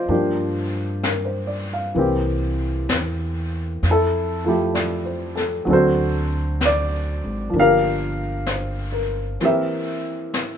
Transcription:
Already playing: A#3 C4 F4 C5 D5 D#5
0.09 G2 F3 A#3 D4 G4, brush sweep
1.03 A#4, brush sweep, snare, hi-hat pedal
1.25 C5
1.47 D5
1.73 F5
1.95 C2 E3 A#3 C4, brush sweep
1.99 G4
2.89 E2, brush sweep, snare, hi-hat pedal
3.83 F2, brush sweep, snare
3.90 E4 A4
4.45 F3 A3 E4
4.49 G4
4.74 D5, brush sweep, snare, hi-hat pedal
5.06 C5
5.36 A4, snare
5.65 D2 F#3 C4 D4, brush sweep
5.70 F#4 A4 C5
6.61 brush sweep, snare, hi-hat pedal
6.66 D5
7.24 G#1
7.50 G1 F3 A#3
7.54 D4, brush sweep
7.60 G4 A#4 F5
8.46 C5, brush sweep, snare, hi-hat pedal
8.92 A#4
9.40 E3 A#3 C4 G4, brush sweep, snare
9.45 A#4 E5
10.34 brush sweep, snare, hi-hat pedal

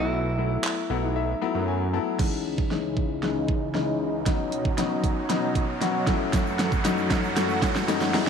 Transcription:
Already playing: B1 F#3 A3 B3 E4
0.00 E4
0.38 F#3 A3 B3 E4
0.64 clap
0.90 B1 F#3 A3 B3 E4 F#5
1.04 D#4
1.16 E5
1.42 F#3 A3 B3 E4
1.55 F#2
1.68 G#5
1.93 F#3 A3 B3 E4 A5
2.19 C#2 C#3 E3 G#3 C#4 D#4, kick, snare, crash, riser
2.58 kick
2.71 E3 G#3 C#4 D#4, snare
2.97 kick
3.23 E3 G#3 C#4 D#4, snare
3.48 kick
3.74 E3 G#3 C#4 D#4, snare
4.26 B2 F#3 B3 C#4 D#4, kick, snare, closed hi-hat
4.52 closed hi-hat
4.65 kick
4.78 F#3 B3 C#4 D#4, snare, closed hi-hat
5.04 kick, closed hi-hat
5.29 F#3 B3 C#4 D#4, snare, closed hi-hat
5.55 kick, closed hi-hat
5.81 F#3 B3 C#4 F#4, snare, closed hi-hat
6.07 F#2 E3 F#3 A3 C#4 E4 F#4, kick, snare, closed hi-hat
6.33 kick, snare, closed hi-hat, shaker
6.46 shaker
6.59 snare, closed hi-hat, shaker
6.72 kick, shaker
6.85 F#3 A3 C#4 D#4, snare, closed hi-hat, shaker
6.98 shaker
7.11 kick, snare, closed hi-hat, shaker
7.24 shaker
7.36 F#3 A3 C#4 F#4, snare, closed hi-hat, shaker
7.50 shaker
7.62 kick, snare, closed hi-hat, shaker
7.75 snare, shaker
7.88 F#3 A3 C#4 D#4, snare, closed hi-hat, shaker
8.01 snare, shaker
8.14 E2 E3 G#3 B3 D#4, snare, open hi-hat

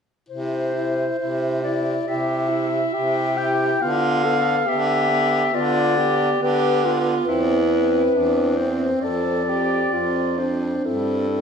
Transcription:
0.29 C3 E4 C5
0.74 E4
1.19 C3 E4
1.63 E4 D5
2.06 C3 E4 G4 E5
2.49 E4
2.94 C3 E4 G4
3.38 E4 G5
3.81 D3 B3 F4 F5
4.25 B3 A4
4.66 D3 B3 G4 E5
5.10 B3
5.54 D3 B3 F4 D5
5.97 B3 G4
6.41 D3 B3 G4 B4
6.85 B3 F4
7.27 E2 C4 E4 B4
7.70 C4
8.14 E2 C4 D4
8.57 C4 C5
9.01 F2 C4 A4 D5
9.45 C4
9.50 G4
9.91 F2 C4 F4
10.38 C4 D4 C5
10.84 G2 C4 E4 A4
11.29 C4

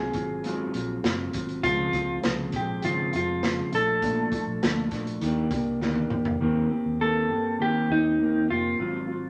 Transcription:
Already playing: G#2 F#3 C4 F4 G#4
0.13 G#1 F#3 C4 F4, kick, closed hi-hat
0.44 G#2 F#3 C4 F4, closed hi-hat
0.74 A#1 F#3 C4 F4, closed hi-hat
1.04 F#1 G#2 F#3 C4 F4, snare, closed hi-hat
1.33 G#1 C4 F4, kick, closed hi-hat
1.37 F#3
1.49 closed hi-hat
1.63 C#2 C#3 F3 G#3 C4 F4, kick, closed hi-hat
1.93 C#2 F3 G#3 C4, kick, closed hi-hat
2.23 C2 C#3 F3 G#3 C4, snare, closed hi-hat
2.52 A#1 G#3 C4 G4, kick, closed hi-hat
2.57 F3
2.82 G#1 C#3 F3 G#3 C4 F4, closed hi-hat
3.13 F1 F3 G#3 C4 F4, closed hi-hat
3.43 C#3 F3 G#3 C4, snare, closed hi-hat
3.73 A#1 F3 A3 D4 A4, closed hi-hat
4.02 A#2 F3 A3 D4, kick, closed hi-hat
4.32 F3 A3 D4, kick, closed hi-hat
4.47 A#1
4.61 D2 A#2 F3 A3 D4, snare, closed hi-hat
4.91 A#1 F3 A3 D4, kick, snare, closed hi-hat
5.07 closed hi-hat
5.21 D#2 D#3 A#3 D4 G4, closed hi-hat
5.51 C2 A#3 D4 G4, kick, closed hi-hat
5.81 D2 D#3 A#3 D4 G4, snare
5.95 high tom
6.10 D#2 A#3 D4 G4, mid tom
6.25 floor tom
6.40 D#2 D#3 A#3 C4 G4
6.69 A#3 C4 G4
6.86 D#2
7.00 D#3 A#3 C4 G4 A4
7.29 G2 A#3 C4 G4
7.59 D#3 A#3 C4 G4
7.90 D#2 A#3 C4 D#4 G4
8.19 D#3 A#3 C4 G4
8.48 F1 A#3 C4 F4 G4
8.78 G#1 G#2 F#3 C4 F4
9.07 F#3 C4 F4

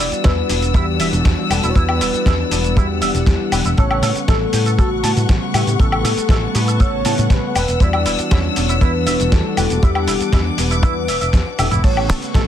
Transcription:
Already playing: E3 G3 B3 D4 F#4 D5 F#5 E6
0.12 muted picked electric bass stroke, closed hi-hat, shaker
0.24 E2 E4 B4, kick, snare, closed hi-hat, shaker
0.49 E1 D4, open hi-hat, shaker
0.62 closed hi-hat, shaker
0.74 E2 E4 G4, kick, closed hi-hat, shaker
0.99 E1 E3 G3 B3 D4 F#4 E5, open hi-hat, shaker
1.13 E1, closed hi-hat, shaker
1.25 E2, kick, snare, closed hi-hat, shaker
1.50 E1 A4 B4, open hi-hat, high woodblock, shaker
1.63 E1 E4, closed hi-hat, shaker
1.69 C#5
1.75 E2 E3 G3 B3 D4 E4 F#4 B4, kick, closed hi-hat, shaker
1.89 E4, high woodblock
2.01 E1 E4, open hi-hat, shaker
2.14 muted picked electric bass stroke, closed hi-hat, shaker
2.26 E2 E4, kick, snare, closed hi-hat, shaker
2.51 E1 D4 B4, open hi-hat, shaker
2.64 closed hi-hat, shaker
2.76 E2 E4 G4, kick, closed hi-hat, shaker
3.01 E1 E3 G3 B3 D4 E5 F#5, open hi-hat, shaker
3.14 E1, closed hi-hat, shaker
3.26 E2, kick, snare, closed hi-hat, shaker
3.52 E1 B4, open hi-hat, high woodblock, shaker
3.65 E1 E4, closed hi-hat, shaker
3.78 A1 C#3 G3 A3 B3 A4 B4 C#5 F#5 C#6, kick, closed hi-hat, shaker
3.91 A4, high woodblock
4.02 A2 A4, open hi-hat, shaker
4.15 muted picked electric bass stroke, closed hi-hat, shaker
4.28 A1 A4, kick, snare, closed hi-hat, shaker
4.53 A2 G4, open hi-hat, shaker
4.66 A4, closed hi-hat, shaker
4.78 A1 F#4 A4, kick, closed hi-hat, shaker
5.03 A2 C#3 G3 A3 B3 F#5 A5, open hi-hat, shaker
5.17 A2, closed hi-hat, shaker
5.29 A1, kick, snare, closed hi-hat, shaker
5.54 A2 G4 E5, open hi-hat, high woodblock, shaker
5.67 A2, closed hi-hat, shaker
5.79 A1 C#3 G3 A3 B3 A4 F#5 A5, kick, closed hi-hat, shaker
5.92 A4, high woodblock
6.04 A2 A4, open hi-hat, shaker
6.18 muted picked electric bass stroke, closed hi-hat, shaker
6.29 A1 A4, kick, snare, closed hi-hat, shaker
6.55 A2 G4 B4, open hi-hat, shaker
6.68 A4, closed hi-hat, shaker
6.80 A1 A4 C#5, kick, closed hi-hat, shaker
7.04 A2 C#3 G3 A3 B3 F#5 A5, open hi-hat, shaker
7.18 A2, closed hi-hat, shaker
7.30 A1 B4, kick, snare, closed hi-hat, shaker
7.56 E1 D4 B4 E6, open hi-hat, high woodblock, shaker
7.68 E1, closed hi-hat, shaker
7.79 E2 E3 G3 B3 D4 E4 F#4 D5, kick, closed hi-hat, shaker
7.93 E4, high woodblock
8.06 E1 E4, open hi-hat, shaker
8.19 muted picked electric bass stroke, closed hi-hat, shaker
8.31 E2 E4 C#5, kick, snare, closed hi-hat, shaker
8.56 E1 D4, open hi-hat, shaker
8.69 E4, closed hi-hat, shaker
8.81 E2 E4 B4, kick, closed hi-hat, shaker
9.05 E1 E3 G3 B3 D4 F#4 E5, open hi-hat, shaker
9.20 E1, closed hi-hat, shaker
9.32 E2 A4, kick, snare, closed hi-hat, shaker
9.57 E1 B4 D6, open hi-hat, high woodblock, shaker
9.70 E1, closed hi-hat, shaker
9.81 E2 E3 G3 B3 D4 E4 G4 F#5, kick, closed hi-hat, shaker
9.95 E4, high woodblock
10.08 E1 E4, open hi-hat, shaker
10.21 muted picked electric bass stroke, closed hi-hat, shaker
10.33 E2 E4, kick, snare, closed hi-hat, shaker
10.58 E1 D4 B4, open hi-hat, shaker
10.71 E4, closed hi-hat, shaker
10.83 E2 E4, kick, closed hi-hat, shaker
11.08 E1 E5, open hi-hat, shaker
11.21 E1 E5, closed hi-hat, shaker
11.33 E2, kick, snare, closed hi-hat, shaker
11.58 E1 E3 G3 B3 D4 A4 E5, open hi-hat, high tom, high woodblock, shaker
11.71 E1 E4, closed hi-hat, mid tom, shaker
11.83 A1 C#3 G3 A3 B3 A4 B4 C#5 F#5 C#6, kick, closed hi-hat, crash, shaker
11.96 A4, high woodblock
12.09 A2 A4, open hi-hat, shaker
12.22 muted picked electric bass stroke, closed hi-hat, shaker
12.34 A1 A4, kick, snare, closed hi-hat, shaker

